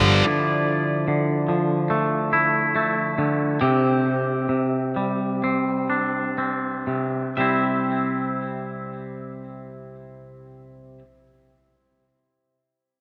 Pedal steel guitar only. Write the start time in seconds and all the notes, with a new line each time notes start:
Already playing: G3 F4 B4
0.25 F3 E4 D5
3.61 C4 G4
7.37 C4 G4 E5